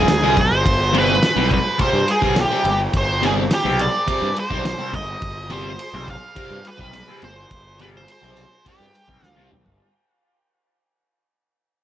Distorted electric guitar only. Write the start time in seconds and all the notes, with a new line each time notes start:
0.08 muted distorted electric guitar stroke
0.22 G2 D3 G3
0.37 muted distorted electric guitar stroke
0.93 C3 G3 C4
1.36 C3 G3 C4
1.78 C3 G3 C4
2.22 C3 G3 C4
2.37 muted distorted electric guitar stroke
2.51 C3 G3 C4
2.66 muted distorted electric guitar stroke
3.22 C3 G3 C4
3.65 C3 G3 C4
4.07 C3 G3 C4
4.50 C3 G3 C4
4.65 muted distorted electric guitar stroke
4.79 C3 G3 C4
4.93 muted distorted electric guitar stroke
5.50 C3 G3 C4
5.94 C3 G3 C4
6.35 C3 G3 C4
6.78 C3 G3 C4
6.93 muted distorted electric guitar stroke
7.08 C3 G3 C4
7.23 muted distorted electric guitar stroke
7.80 C3 G3 C4
8.22 C3 G3 C4
8.65 C3 G3 C4
9.07 C3 G3 C4
9.22 muted distorted electric guitar stroke
9.36 C3 G3 C4
9.52 muted distorted electric guitar stroke